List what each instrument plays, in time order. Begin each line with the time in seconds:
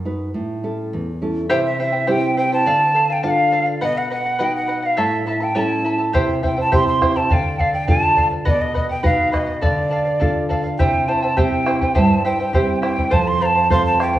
Already playing: nylon-string guitar F#2
0.05 nylon-string guitar D#4 F#4 B4
0.34 nylon-string guitar A2
0.63 nylon-string guitar C#4 E4 A4
0.93 nylon-string guitar E2
1.21 nylon-string guitar C#4 E4 A4
1.49 nylon-string guitar C3, charango E4 G4 C5 E5 G5, quena C5
1.66 quena E5
1.78 charango E4 C5 E5 G5, quena E5
1.92 charango E4 C5 G5
2.07 nylon-string guitar C4 E4 G4, charango E4 G4 C5 E5 G5, quena G5
2.37 charango E4 C5 E5 G5, quena G5
2.52 charango E4 C5 G5, quena A5
2.66 nylon-string guitar D3, charango A4 D5 F5
2.94 charango A4 D5 F5
3.10 charango D5 F5, quena G5
3.23 nylon-string guitar D4 F4 A4, charango A4 D5 F5, quena F#5
3.30 quena F5
3.52 charango A4 D5 F5
3.66 charango D5 F5
3.81 nylon-string guitar B2, charango B4 D#5 F#5, quena D#5
3.98 quena F#5
4.10 charango B4 D#5 F#5, quena F#5
4.25 charango D#5 F#5
4.39 nylon-string guitar D#4 F#4 B4, charango B4 D#5 F#5, quena G5
4.56 quena F#5
4.68 charango B4 D#5 F#5
4.82 charango D#5 F#5, quena F5
4.97 nylon-string guitar A2, charango E4 A4 C#5 E5 A5, quena E5
5.26 charango E4 A4 E5 A5, quena E5
5.40 charango E4 A4 A5, quena G5
5.55 nylon-string guitar C#4 E4 A4, charango E4 A4 C#5 E5 A5, quena A#5
5.61 quena A5
5.84 charango E4 A4 E5 A5
5.98 charango E4 A4 A5
6.13 nylon-string guitar C3, charango E4 G4 C5 E5 G5, bombo low
6.43 charango E4 C5 E5 G5, quena G5, bombo low
6.56 charango E4 C5 G5, quena A5
6.72 nylon-string guitar C4 E4 G4, charango E4 G4 C5 E5 G5, quena C6, bombo low
6.87 quena C6
7.01 charango E4 C5 E5 G5, bombo rim, bombo low
7.16 charango E4 C5 G5, quena A5
7.30 nylon-string guitar D3, charango A4 D5 F5, quena G5 A5, bombo low
7.59 charango A4 D5 F5, quena F5, bombo low
7.73 charango D5 F5, quena G5
7.87 nylon-string guitar D4 F4 A4, charango A4 D5 F5, quena A5, bombo low
8.16 charango A4 D5 F5, bombo low
8.31 charango D5 F5
8.45 nylon-string guitar B2, charango B4 D#5 F#5, quena D5, bombo low
8.61 quena D#5
8.74 charango B4 D#5 F#5, quena D#5, bombo low
8.89 charango D#5 F#5, quena G5
9.03 nylon-string guitar D#4 F#4 B4, charango B4 D#5 F#5, quena F5, bombo low
9.32 charango B4 D#5 F#5, quena D#5, bombo rim, bombo low
9.46 charango D#5 F#5
9.61 nylon-string guitar D3, charango A4 D5 F5, quena D5, bombo low
9.90 charango A4 D5 F5
10.05 charango D5 F5
10.19 nylon-string guitar D4 F4 A4, charango A4 D5 F5, bombo low
10.49 charango A4 D5 F5, bombo low
10.64 charango D5 F5
10.78 nylon-string guitar C3, charango E4 G4 C5 E5 G5, quena G5, bombo low
11.08 charango E4 C5 E5 G5, quena A5
11.23 charango E4 C5 G5
11.37 nylon-string guitar C4 E4 G4, charango E4 G4 C5 E5 G5, quena G5, bombo low
11.66 charango E4 C5 E5 G5, bombo rim
11.81 charango E4 C5 G5, bombo low
11.95 nylon-string guitar G2, charango E4 G4 C5 E5 G5, quena A5, bombo low
12.24 charango E4 C5 E5 G5, quena G5
12.40 charango E4 C5 G5
12.53 nylon-string guitar C4 E4 G4, charango E4 G4 C5 E5 G5, bombo low
12.82 charango E4 C5 E5 G5, quena G5, bombo rim
12.97 charango E4 C5 G5, bombo low
13.11 nylon-string guitar F2, charango A4 C5 F5, quena A5, bombo low
13.28 quena C6
13.41 charango A4 C5 F5, quena A#5
13.46 quena A5
13.55 charango C5 F5
13.70 nylon-string guitar C4 F4 A4, charango A4 C5 F5, quena C6, bombo low
13.86 quena A5
13.99 charango A4 C5 F5, quena G5, bombo rim
14.13 charango C5 F5, bombo low